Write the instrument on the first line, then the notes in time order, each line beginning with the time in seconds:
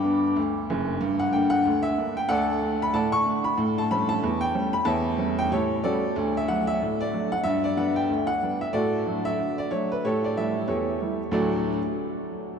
upright piano
Already playing: G2 G5 B5 D6
0.03 D3 B3 D4
0.36 D2
0.70 F#1 F#2
1.01 G2
1.20 F#5
1.33 D3 A#3 D4 G5
1.50 F#5
1.65 D2
1.83 E5
1.98 D3 A#3 D4
2.17 G5
2.29 D2 A4 D5 F#5
2.61 D3 A3 D4
2.82 B5
2.94 A2 D5 F#5 A5
3.12 C#6
3.26 D3 A3 D4
3.44 B5
3.58 A2
3.78 A5
3.91 G3 A3 C#4 B5
4.09 A5
4.23 E2
4.41 G5
4.55 G3 A3 C#4
4.73 B5
4.85 E2 C#5 E5 A5
5.18 G3 A3 C#4
5.39 G5
5.51 A2 G4 A4 C#5
5.84 G3 A3 C#4 F#4 A4 D5
6.16 D2
6.37 E5
6.48 F#3 A3 D4 F#5
6.67 E5
6.82 A2
7.01 D5
7.14 F#3 A3 D4
7.32 F#5
7.44 G2 E5
7.64 D5
7.77 G3 B3 D4 F#5
7.96 G5
8.09 D2
8.27 F#5
8.43 G3 B3 D4
8.61 E5
8.73 A2 F#4 A4 D5
9.06 F#3 A3 D4
9.25 E5
9.38 D3
9.58 D5
9.71 F#3 A3 D4 C#5
9.92 B4
10.05 A2 G4 A4 C#5
10.24 D5
10.37 G3 A3 E4 E5
10.68 E2 G4 A4 C#5
11.02 G3 A3 E4
11.31 D2 A2 F#3 A3 D4 F#4 D5